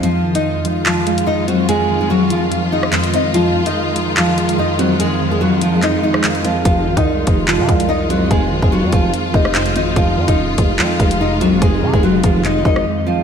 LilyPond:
<<
  \new Staff \with { instrumentName = "Nylon-string guitar" } { \time 4/4 \key f \phrygian \tempo 4 = 145 <f f'>8. <ees' ees''>4~ <ees' ees''>16 <f f'>4 <ees' ees''>8 <ges ges'>8 | <aes aes'>8. <aes aes'>16 <ges ges'>8 <f f'>8 r8 <ees' ees''>8 <c' c''>8 <ees' ees''>8 | <f f'>8. <ees' ees''>4~ <ees' ees''>16 <f f'>4 <ees' ees''>8 <ges ges'>8 | <aes aes'>8. <aes aes'>16 <ges ges'>8 <f f'>8 <ees' ees''>8 <ees' ees''>4 <f f'>8 |
<f f'>8. <ees' ees''>4~ <ees' ees''>16 <f f'>4 <ees' ees''>8 <ges ges'>8 | <aes aes'>8. <aes aes'>16 <ges ges'>8 <f f'>8 r8 <ees' ees''>8 <c' c''>8 <ees' ees''>8 | <f f'>8. <ees' ees''>4~ <ees' ees''>16 <f f'>4 <ees' ees''>8 <ges ges'>8 | <aes aes'>8. <aes aes'>16 <ges ges'>8 <f f'>8 <ees' ees''>8 <ees' ees''>4 <f f'>8 | }
  \new Staff \with { instrumentName = "String section" } { \clef bass \time 4/4 \key f \phrygian << { f'1~ | f'1~ | f'1~ | f'1 |
f'1~ | f'1~ | f'1~ | f'1 | } \\ { <ees aes>1~ | <ees aes>1~ | <ees aes>1~ | <ees aes>1~ |
<ees aes>1~ | <ees aes>1 | <ees aes>1~ | <ees aes>1 | } >> }
  \new Staff \with { instrumentName = "Synth keys" } { \clef bass \time 4/4 \key f \phrygian f,8 ees8 f,8 f8 f,8 aes8 f,8 c'8 | f,8 ees8 f,8 f8 f,8 aes8 f,8 c'8 | f,8 ees8 f,8 f8 f,8 aes8 f,8 c'8 | f,8 ees8 f,8 f8 f,8 aes8 f,8 c'8 |
f,8 ees8 f,8 f8 f,8 aes8 f,8 c'8 | f,8 ees8 f,8 f8 f,8 aes8 f,8 c'8 | f,8 ees8 f,8 f8 f,8 aes8 f,8 c'8 | f,8 ees8 f,8 f8 f,8 aes8 f,8 c'8 | }
  \new Staff \with { instrumentName = "808-style bass" } { \clef bass \time 4/4 \key f \phrygian r1 | r1 | r1 | r1 |
f,,8 aes,,16 c,8. f,,8. c16 c,4. | f,,8 aes,,16 f,,8 f,16 f,,8 r8 f,,4 aes,,8 | f,,8 f,16 ees,,8. f,,8 f,8 f,,4 c,16 f,,16 | f,,8 c16 f,,8. f,,4 aes,,8 r4 | }
  \new DrumStaff \with { instrumentName = "Drums" } \drummode { \time 4/4 hh8. hh16 r8 hh8 hc8 hh16 hh16 r8 hh8 | hh4 r8 hh8 hh8. ss16 <hc hh>16 hh16 hh8 | hh8. hh16 r8 hh8 hc8 hh16 hh16 r8 hh8 | hh4 r8 hh8 <hc hh>8. ss16 <hc hh>16 hh16 hh8 |
<hh bd>8. <hh bd>16 r8 <hh bd>8 hc8 <hh bd>16 hh16 r8 hh8 | <hh bd>8. bd16 r8 <hh bd>8 hh8 bd16 ss16 <hc hh>16 hh16 hh8 | <hh bd>8. <hh bd>16 r8 <hh bd>8 hc8 <hh bd>16 hh16 r8 hh8 | <hh bd>8. bd16 r8 <hh bd>8 <hc hh>8 bd16 ss16 r4 | }
>>